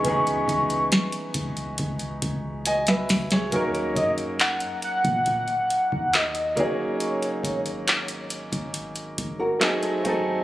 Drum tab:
HH |xxxxxxxxxxx-xxox|xxxxxxxxxxx-xxx-|xxxxxxxxxxx-xxx-|
CP |----------------|----x-------x---|----x-------x---|
SD |----o--------ooo|----------------|----------------|
BD |o-o---o-o-o-----|o-o----oo--o--o-|--o----o--o-----|